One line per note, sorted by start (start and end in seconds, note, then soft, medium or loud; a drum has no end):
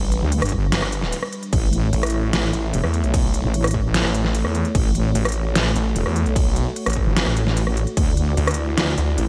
0.00 0.20 A1 loud
0.00 1.49 G3 medium
0.00 1.49 D4 medium
0.00 1.49 B4 medium
0.12 closed hi-hat medium
0.22 0.40 D2 loud
0.32 closed hi-hat medium
0.32 crash soft
0.42 0.71 G1 loud
0.42 cross-stick medium
0.42 closed hi-hat medium
0.45 closed hi-hat medium
0.49 kick medium
0.49 closed hi-hat medium
0.72 1.13 G1 loud
0.72 snare loud
0.72 closed hi-hat medium
0.72 crash medium
0.82 cross-stick medium
0.92 closed hi-hat medium
1.02 snare soft
1.12 closed hi-hat medium
1.12 crash soft
1.23 cross-stick medium
1.33 closed hi-hat medium
1.43 closed hi-hat soft
1.53 1.91 A1 loud
1.53 7.93 A3 medium
1.53 4.72 E4 medium
1.53 7.93 C#5 loud
1.53 kick loud
1.53 closed hi-hat medium
1.53 crash medium
1.73 closed hi-hat medium
1.93 2.32 A1 loud
1.93 closed hi-hat medium
1.93 crash medium
2.03 cross-stick medium
2.03 closed hi-hat medium
2.06 closed hi-hat medium
2.10 closed hi-hat medium
2.33 2.52 A1 loud
2.33 snare loud
2.33 closed hi-hat medium
2.33 crash medium
2.53 2.72 A1 loud
2.53 closed hi-hat medium
2.74 2.82 E1 loud
2.74 closed hi-hat medium
2.74 crash soft
2.84 3.02 E2 loud
2.84 cross-stick medium
2.94 closed hi-hat medium
3.04 3.42 B1 loud
3.04 closed hi-hat soft
3.14 kick loud
3.14 closed hi-hat medium
3.14 crash medium
3.34 closed hi-hat medium
3.44 4.03 A1 loud
3.54 closed hi-hat medium
3.54 crash soft
3.64 cross-stick medium
3.64 closed hi-hat medium
3.67 closed hi-hat medium
3.71 kick medium
3.71 closed hi-hat medium
3.94 snare loud
3.94 closed hi-hat medium
3.94 crash medium
4.04 4.43 A1 loud
4.04 cross-stick medium
4.14 closed hi-hat medium
4.25 snare soft
4.35 closed hi-hat medium
4.35 crash soft
4.45 4.63 E2 medium
4.45 cross-stick medium
4.55 closed hi-hat medium
4.65 closed hi-hat soft
4.75 5.14 A1 loud
4.75 9.28 F#4 medium
4.75 kick loud
4.75 closed hi-hat medium
4.75 crash medium
4.95 closed hi-hat medium
5.15 5.54 A1 loud
5.15 closed hi-hat medium
5.15 crash soft
5.25 cross-stick medium
5.25 closed hi-hat medium
5.29 closed hi-hat medium
5.32 closed hi-hat medium
5.55 5.74 A1 loud
5.55 snare loud
5.55 closed hi-hat medium
5.55 crash medium
5.76 5.94 A1 loud
5.76 closed hi-hat medium
5.96 6.04 E1 medium
5.96 closed hi-hat medium
5.96 crash soft
6.06 6.24 E2 medium
6.06 cross-stick soft
6.16 closed hi-hat medium
6.26 6.65 B1 loud
6.26 closed hi-hat soft
6.36 kick loud
6.36 closed hi-hat medium
6.36 crash medium
6.56 closed hi-hat medium
6.76 closed hi-hat medium
6.76 crash soft
6.86 7.05 A1 medium
6.86 cross-stick medium
6.86 closed hi-hat medium
6.90 closed hi-hat medium
6.93 kick medium
6.93 closed hi-hat medium
7.06 7.25 G1 loud
7.17 snare loud
7.17 closed hi-hat medium
7.17 crash medium
7.27 7.85 A1 loud
7.27 cross-stick medium
7.37 closed hi-hat medium
7.47 snare soft
7.57 closed hi-hat medium
7.57 crash soft
7.67 cross-stick medium
7.77 closed hi-hat medium
7.87 closed hi-hat soft
7.97 8.36 D2 loud
7.97 9.28 E4 medium
7.97 9.28 D5 loud
7.97 kick loud
7.97 closed hi-hat medium
7.97 crash medium
8.17 closed hi-hat medium
8.37 8.76 D2 loud
8.37 closed hi-hat medium
8.37 crash soft
8.47 cross-stick medium
8.47 closed hi-hat soft
8.51 closed hi-hat medium
8.54 closed hi-hat medium
8.78 8.96 D2 loud
8.78 snare loud
8.78 closed hi-hat medium
8.78 crash medium
8.98 9.16 D2 loud
8.98 closed hi-hat medium
9.18 9.26 A1 medium
9.18 closed hi-hat medium
9.18 crash soft